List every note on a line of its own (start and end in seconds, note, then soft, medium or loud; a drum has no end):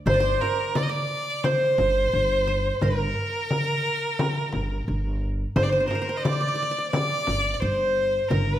0.00 0.14 D2 medium
0.06 0.34 G1 medium
0.06 0.42 C5 loud
0.06 0.20 C5 medium
0.06 frame drum medium
0.14 0.75 D5 medium
0.20 1.26 C5 medium
0.41 0.78 A#4 medium
0.41 frame drum medium
0.75 0.89 D5 medium
0.75 0.84 D5 medium
0.75 frame drum medium
0.83 0.90 D#5 medium
0.89 1.46 D5 loud
0.89 1.88 D5 medium
1.44 2.85 C5 loud
1.44 2.47 C5 medium
1.44 frame drum medium
1.78 2.06 G1 medium
1.78 frame drum medium
2.13 2.69 G1 medium
2.47 3.53 C5 medium
2.81 3.10 G1 medium
2.81 5.18 A#4 medium
2.81 5.22 A#4 loud
2.81 frame drum medium
3.51 frame drum medium
4.19 frame drum medium
4.53 4.81 G1 medium
4.53 frame drum medium
4.88 5.43 G1 medium
5.56 5.84 G1 loud
5.56 5.64 C5 medium
5.56 frame drum medium
5.63 5.72 C5 medium
5.63 5.71 D5 medium
5.70 5.88 C5 medium
5.70 5.80 C5 medium
5.80 5.87 C5 soft
5.87 6.18 A#4 medium
5.87 5.95 C5 medium
5.87 frame drum medium
5.95 6.01 C5 medium
6.02 6.09 C5 medium
6.09 7.15 C5 medium
6.17 6.24 D#5 medium
6.23 6.90 D5 medium
6.23 6.32 D5 medium
6.23 frame drum medium
6.33 6.40 D5 soft
6.41 6.48 D5 medium
6.48 6.55 D5 medium
6.55 6.62 D5 medium
6.62 6.71 D5 medium
6.71 6.78 D5 medium
6.79 6.93 D5 medium
6.91 7.53 D5 loud
6.91 7.92 D5 medium
6.91 frame drum medium
7.27 7.55 G1 medium
7.27 frame drum medium
7.53 7.61 D5 medium
7.60 8.18 G1 medium
7.60 8.29 C5 medium
7.60 8.59 C5 medium
8.28 8.58 G1 loud
8.28 8.59 A#4 medium
8.28 frame drum medium